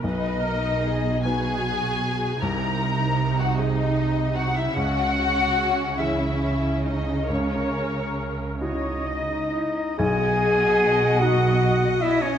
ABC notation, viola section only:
X:1
M:6/8
L:1/8
Q:3/8=49
K:B
V:1 name="Viola section"
B A G F3 | D6 | C6 | A3 c d E |
d6 |]